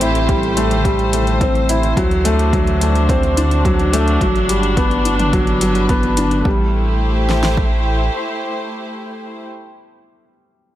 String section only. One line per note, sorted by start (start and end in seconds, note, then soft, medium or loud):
0.00 1.97 A2 medium
0.00 1.97 A3 medium
0.00 1.97 G4 medium
0.00 4.21 C5 medium
1.97 4.21 D3 medium
2.17 6.46 F#4 medium
2.31 6.45 D4 medium
5.22 6.45 B4 medium
6.45 9.46 A3 medium
6.53 9.45 E4 medium
6.61 9.45 G4 medium
6.70 9.45 C5 medium